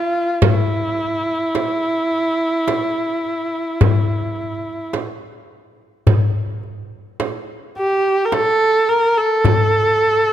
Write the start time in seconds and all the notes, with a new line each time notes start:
0.00 F4
0.42 E4, frame drum, darbuka dum
0.98 darbuka ka
1.55 darbuka tek, frame drum
2.12 darbuka ka
2.68 darbuka tek, frame drum
3.25 darbuka ka
3.81 frame drum, darbuka dum
4.93 darbuka tek, frame drum
6.07 darbuka dum, frame drum
6.63 darbuka ka
7.20 darbuka tek, frame drum
7.76 G4, darbuka ka
8.25 A#4
8.32 A4, darbuka tek, frame drum
8.88 A#4, darbuka ka
9.17 A4
9.45 darbuka dum, frame drum